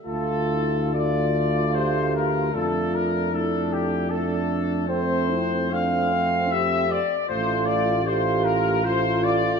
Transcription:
<<
  \new Staff \with { instrumentName = "Trumpet section" } { \time 3/4 \key d \minor \tempo 4 = 76 a'4 d''4 c''8 bes'8 | a'8 bes'8 a'8 g'8 a'4 | c''4 f''4 e''8 d''8 | c''8 d''8 c''8 bes'8 c''8 d''8 | }
  \new Staff \with { instrumentName = "Euphonium" } { \time 3/4 \key d \minor f'8 e'8 f'4 g'4 | f'4 e'4 d'4 | c'8 e'8 d'8 c'8 g'8 r8 | f'4 g'4 f'4 | }
  \new Staff \with { instrumentName = "Flugelhorn" } { \time 3/4 \key d \minor f'4 f'2 | d'4 d'4 d'4 | c'4 c'4. r8 | f'4 f'4 f'4 | }
  \new Staff \with { instrumentName = "Trombone" } { \time 3/4 \key d \minor a4 a2 | a4 a4 a4 | a4 a4. r8 | a4 a4 a4 | }
  \new Staff \with { instrumentName = "Tuba" } { \clef bass \time 3/4 \key d \minor d,2. | f,2.~ | f,2~ f,8 r8 | a,,2. | }
>>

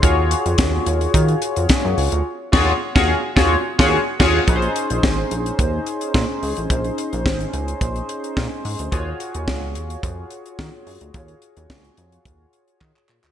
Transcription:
<<
  \new Staff \with { instrumentName = "Analog polysynth" } { \time 4/4 \key bes \minor \tempo 4 = 108 <f' ges' aes' des''>1 | r8 <f' ges' aes' des''>8 r16 <f' ges' aes' des''>8 r16 <f' ges' aes' des''>8 r16 <f' ges' aes' des''>8 r16 <f' ges' aes' des''>8 | <des' ees' aes' ces'' c''>1~ | <des' ees' aes' ces'' c''>1 |
<f' ges' aes' des''>1~ | <f' ges' aes' des''>1 | }
  \new Staff \with { instrumentName = "Analog synth bass" } { \clef bass \time 4/4 \key bes \minor ees,8. f,16 ees,8 ees,8 ees8 r16 f,16 r16 ges,16 des,16 d,16 | r8 ees,8 r16 ees,8 r16 ees,8 r16 ees,8 r16 ees,8 | bes,,8 r16 bes,,16 aes,,8 bes,,8 ees,8 r8 bes,16 r16 des,16 a,,16 | bes,,8 r16 bes,,16 aes,,8 des,8 bes,,8 r8 bes,16 r16 aes,16 d,16 |
ees,8 r16 ees,16 des,8 ees,8 f,8 r8 ees16 r16 ges,16 d,16 | ees,8 r16 ees,16 des,8 f,8 ees,8 r8 ees16 r16 bes,16 d,16 | }
  \new DrumStaff \with { instrumentName = "Drums" } \drummode { \time 4/4 <hh bd>8 hh16 hh16 <hh bd sn>8 hh16 hh16 <hh bd>16 hh16 hh16 hh16 <hh bd sn>8 hho16 hh16 | r8 <cymc bd sn>8 r16 <bd sn>8. <bd sn>8. <bd sn>16 r8 <cymc bd sn>8 | <hh bd>16 hh16 hh16 hh16 <bd sn>8 hh16 hh16 <hh bd>8 hh16 hh16 <bd sn>8 hho16 hh16 | <hh bd>16 hh16 hh16 hh16 <bd sn>16 hh16 hh16 hh16 <hh bd>16 hh16 hh16 hh16 <bd sn>8 hho16 hh16 |
<hh bd>8 hh16 hh16 <bd sn>8 hh16 hh16 <hh bd>8 hh16 hh16 <bd sn>8 hho16 hh16 | <hh bd>16 hh16 hh16 hh16 <bd sn>16 hh16 hh16 hh16 <hh bd>8 hh16 hh16 <hc bd>16 hc16 hc16 hc16 | }
>>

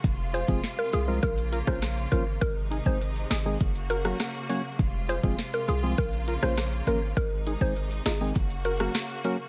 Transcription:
<<
  \new Staff \with { instrumentName = "Synth pluck" } { \time 4/4 \key f \phrygian \tempo 4 = 101 r8 c''16 r8 bes'16 aes'16 r16 bes'16 r8 c''16 r8 bes'16 r16 | bes'16 r8 c''16 r8 aes'16 r8. bes'16 r4 r16 | r8 c''16 r8 bes'16 aes'16 r16 bes'16 r8 c''16 r8 bes'16 r16 | bes'16 r8 c''16 r8 aes'16 r8. bes'16 r4 r16 | }
  \new Staff \with { instrumentName = "Synth stab" } { \time 4/4 \key f \phrygian r8 <f' aes'>16 <f aes c' f' aes'>16 r8 <f' aes'>16 <f aes c' f' bes'>16 r8 <f' bes'>16 <f bes des' f' bes'>16 r8 <f bes des' f' c''>16 r16 | r8 <ees' aes'>16 <ees aes c' ees' aes'>16 r8 <ees' aes'>16 <ees aes c' ees' aes'>16 r8 <ges' bes'>16 <ges bes des' ges' bes'>16 r8 <ges bes des' ges' des''>16 r16 | r8 <f' aes'>16 <f aes c' f' aes'>16 r8 <f' aes'>16 <f aes c' f' aes'>16 r8 <f' bes'>16 <f bes des' f' c''>16 r8 <f bes des' f' bes'>16 r16 | r8 <ees' aes'>16 <ees aes c' ees' aes'>16 r8 <ees' f'>16 <ees aes c' ees' aes'>16 r8 <ges' bes'>16 <ges bes des' ges' bes'>16 r8 <ges bes des' ges' bes'>16 r16 | }
  \new Staff \with { instrumentName = "String section" } { \clef bass \time 4/4 \key f \phrygian << { f'2 f'2 | ees'2 ges'2 | f'1 | ees'2 ges'2 | } \\ { <c aes>2 <des bes>2 | <c aes>2 <des bes>2 | <c aes>2 <des bes>2 | <c aes>2 <des bes>2 | } >> }
  \new Staff \with { instrumentName = "808-style bass" } { \clef bass \time 4/4 \key f \phrygian f,,8. f,,16 r8 c,8 bes,,8. bes,,8. aes,,8 | aes,,8. aes,,8. aes,,8 ges,,4 r4 | f,,8. f,,16 r8 c,8 bes,,8. bes,,8. aes,,8 | aes,,8. aes,,8. aes,,8 ges,,4 r4 | }
  \new DrumStaff \with { instrumentName = "Drums" } \drummode { \time 4/4 <hh bd>8 hh16 bd16 <hh sn>8 hh8 <hh bd>16 hh16 hh16 <bd ss>16 <hh ss sn>16 hh16 <hh bd>8 | <hh bd>8 hh16 bd16 hh16 hh16 <hh ss sn>8 <hh bd>16 hh16 hh16 ss16 <hh ss sn>16 hh16 hh8 | <hh bd>8 hh16 bd16 <hh sn>16 hh16 hh8 <hh bd>16 hh16 hh16 ss16 <hh ss sn>16 hh16 hh8 | <hh bd>8 hh16 bd16 hh16 hh16 <hh ss sn>8 <hh bd>16 hh16 hh16 ss16 <hh ss sn>16 hh16 hh8 | }
>>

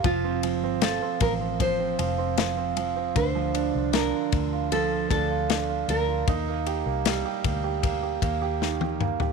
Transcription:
<<
  \new Staff \with { instrumentName = "Nylon-string guitar" } { \time 4/4 \key d \phrygian \tempo 4 = 77 f'4 a'8 bes'8 c''4. r8 | c''4 bes'4 a'8 a'4 bes'8~ | bes'2. r4 | }
  \new Staff \with { instrumentName = "Grand piano" } { \time 4/4 \key d \phrygian f16 c'16 f16 c'16 f16 c'16 f16 c'16 f16 c'16 f16 c'16 f16 c'16 f16 c'16 | d16 f16 d'16 f'16 d'16 f'8 f'16 f16 f'16 d'16 f'16 d'16 f'8 f'16 | ees'16 bes16 g'16 bes16 g16 g'16 bes16 g'16 bes16 g'16 bes16 g'16 ees16 g'16 bes16 g'16 | }
  \new Staff \with { instrumentName = "Fingered electric bass" } { \clef bass \time 4/4 \key d \phrygian f,,8. g,,8 r16 a,,4 f,,4. | d,8. c,8 r16 d,4 d,4 d,8 | ees,8. c,8 r16 d,4 ees,4. | }
  \new DrumStaff \with { instrumentName = "Drums" } \drummode { \time 4/4 <bd cymr>8 cymr8 <cymr sn>8 <bd cymr>8 <bd cymr>8 cymr8 <cymr sn>8 cymr8 | <bd cymr>8 cymr8 <cymr sn>8 <bd cymr>8 cymr8 <bd cymr>8 <cymr sn>8 cymr8 | <bd cymr>8 cymr8 <cymr sn>8 <bd cymr>8 <bd cymr>8 <bd cymr>8 sn16 tommh16 toml16 tomfh16 | }
>>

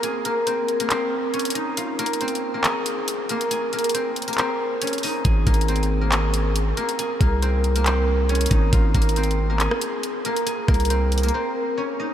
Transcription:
<<
  \new Staff \with { instrumentName = "Guzheng" } { \time 4/4 \key f \minor \tempo 4 = 138 <aes' aes''>8 <bes bes'>8 <c' c''>8. <bes bes'>16 <c' c''>4 <des' des''>8 <ees' ees''>8 | <f' f''>8 <bes bes'>8 <c' c''>8. <bes bes'>16 <aes' aes''>4. <bes bes'>8 | <aes' aes''>8 <bes bes'>8 <c' c''>8. <bes bes'>16 <c' c''>4 <des' des''>8 <ees' ees''>8 | <aes' aes''>8 <bes bes'>8 <c' c''>8. <bes bes'>16 <aes' aes''>4. <bes bes'>8 |
<aes' aes''>8 <bes bes'>8 <c' c''>8. <bes bes'>16 <c' c''>4 <des' des''>8 <ees' ees''>8 | <f' f''>8 <bes bes'>8 <c' c''>8. <bes bes'>16 <aes' aes''>4. <bes bes'>8 | <aes' aes''>8 <bes bes'>8 <c' c''>8. <bes bes'>16 <c' c''>4 <des' des''>8 <ees' ees''>8 | }
  \new Staff \with { instrumentName = "808-style bass" } { \clef bass \time 4/4 \key f \minor r1 | r1 | r1 | aes,,8 aes,,2. r8 |
r8 c,2. aes,,8 | aes,,8 aes,,4.~ aes,,16 r4. r16 | r8 c,4. r2 | }
  \new DrumStaff \with { instrumentName = "Drums" } \drummode { \time 4/4 hh8 hh8 hh8 hh16 hh16 <hc hh>4 hh32 hh32 hh32 hh32 hh8 | \tuplet 3/2 { hh16 r16 r16 hh16 hh16 hh16 hh16 hh16 hh16 r16 r16 r16 } <hc hh>8 hh8 hh8 hh16 hh16 | hh8 hh32 hh32 hh32 hh32 hh8 hh32 hh32 hh32 hh32 <hc hh>4 hh32 hh32 hh32 hh32 hho8 | \tuplet 3/2 { <hh bd>16 r16 r16 <hh bd>16 hh16 hh16 hh16 hh16 hh16 r16 r16 r16 } <hc hh>8 hh8 hh8 hh16 hh16 |
hh8 <hh bd>8 hh8 hh16 hh16 <hc hh>4 hh32 hh32 hh32 hh32 <hh bd>8 | \tuplet 3/2 { <hh bd>16 r16 r16 <hh bd>16 hh16 hh16 hh16 hh16 hh16 r16 r16 r16 } <hc hh>16 ss16 hh8 hh8 hh16 hh16 | hh8 <hh bd ss>32 hh32 hh32 hh32 hh8 hh32 hh32 hh32 hh32 r4 r4 | }
>>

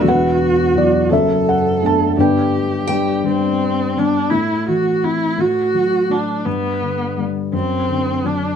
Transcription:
<<
  \new Staff \with { instrumentName = "Steel-string acoustic guitar" } { \time 6/8 \key a \dorian \tempo 4. = 56 e''8 r2 r8 | r4 g''4~ g''16 r8. | r2. | r2. | }
  \new Staff \with { instrumentName = "Viola" } { \time 6/8 \key a \dorian fis'4. a'4. | g'4. c'4 d'8 | e'8 fis'8 e'8 fis'4 d'8 | b4 r8 c'4 d'8 | }
  \new Staff \with { instrumentName = "Felt piano" } { \time 6/8 \key a \dorian << { fis''4 d''8 e''8 fis''8 a''8 | g''2~ g''8 r8 | r2. | r2. | } \\ { b'4. a'4. | b'2~ b'8 r8 | r2. | r2. | } >> }
  \new Staff \with { instrumentName = "Felt piano" } { \clef bass \time 6/8 \key a \dorian <e,, e,>4 <fis b e'>8 <fis,, fis,>4 <a b d'>8 | <g,, g,>4 <g d' b'>8 <g d'>4 <g b d'>8 | a,8 e8 c'8 a,8 fis8 a,8 | g,8 d8 g8 fis,8 d8 fis8 | }
>>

